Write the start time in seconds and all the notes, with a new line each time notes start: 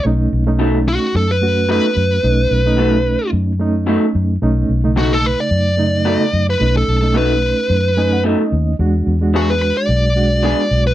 0.05 B1 A3 C#4 D#4
0.33 B1
0.47 A3 C#4 D#4
0.59 B2 F#3 A3 D#4
0.88 F#4
1.15 F#2 A4
1.31 B4
1.42 A3 C#4 F#4
1.69 B2 F#3 A3 D#4 B4
1.97 F#2
2.23 B1 A3 C#4 D#4
2.51 B1
2.65 A3 C#4 D#4
2.77 B2 F#3 A3 D#4
3.33 F#2
3.59 A3 C#4 D#4
3.87 B2 F#3 A3 D#4
4.15 F#2
4.42 B1 A3 C#4 D#4
4.69 B1
4.84 C#3 A3 D#4
4.96 B2 F#3 A3 D#4 F#4
5.13 A4
5.26 B4
5.40 D5
5.51 F#2
5.77 C#3 A3 D#4
6.05 B2 F#3 A3 D#4
6.33 F#2
6.50 B4
6.60 B1 A3 C#4 D#4
6.77 A4
6.88 B1
7.02 A3 C#4 D#4
7.14 B2 F#3 A3 D#4 B4
7.70 F#2
7.97 A3 C#4 D#4 G#5
8.13 F#5
8.24 B2 F#3 A3 D#4 D#5
8.52 D#2
8.79 E2 G#3 D4 F#4
9.07 E2
9.21 G#3 D4 F#4
9.34 E3 B3 D4 F#4 G#4
9.50 B4
9.62 B4
9.77 D5
9.89 B1
10.15 G#3 D4 F#4
10.43 E3 B3 D4 G#4
10.71 B1
10.87 B4